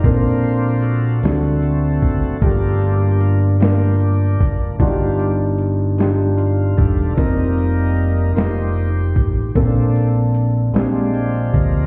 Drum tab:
HH |xxxxxx|xxxxxx|xxxxxx|xxxxxx|
SD |---o--|---o--|---o--|---o--|
BD |o----o|o----o|o----o|o----o|

HH |xxxxxx|
SD |---o--|
BD |o----o|